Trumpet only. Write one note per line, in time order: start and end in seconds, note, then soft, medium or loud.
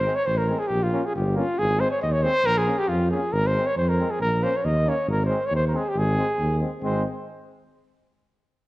0.00 0.17 C5 loud
0.15 0.28 C#5 loud
0.26 0.39 C5 loud
0.38 0.61 A#4 medium
0.59 0.69 G#4 medium
0.67 0.85 G4 loud
0.83 1.07 F4 medium
1.05 1.15 G#4 medium
1.16 1.38 G4 medium
1.37 1.60 F4 loud
1.59 1.82 G#4 loud
1.80 1.91 C5 loud
1.91 2.01 C#5 loud
2.02 2.14 D#5 medium
2.12 2.25 C#5 loud
2.23 2.48 C5 loud
2.46 2.60 A#4 loud
2.58 2.80 G#4 loud
2.78 2.90 G4 loud
2.89 3.11 F4 medium
3.11 3.35 G#4 medium
3.33 3.49 A#4 loud
3.47 3.68 C5 loud
3.67 3.77 C#5 loud
3.78 3.91 C5 medium
3.89 4.12 A#4 medium
4.11 4.21 G#4 medium
4.22 4.45 A#4 loud
4.44 4.58 C5 loud
4.57 4.67 C#5 medium
4.65 4.90 D#5 loud
4.89 5.09 C#5 medium
5.10 5.20 A#4 loud
5.25 5.47 C5 medium
5.46 5.54 C#5 loud
5.55 5.65 C5 loud
5.68 5.78 A#4 medium
5.76 5.91 G#4 loud
5.89 5.99 G4 loud
5.98 6.62 G#4 loud
6.83 7.03 C5 medium